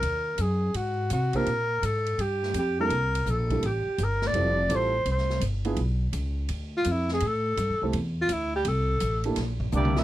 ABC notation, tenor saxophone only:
X:1
M:4/4
L:1/8
Q:"Swing" 1/4=167
K:Cmix
V:1 name="Tenor saxophone"
B2 _A2 _G2 G B- | B2 A2 G2 G B- | B2 A2 G2 B d- | d2 c2 c2 z2 |
z4 z F E ^G | A3 z2 F E G | A3 z4 z |]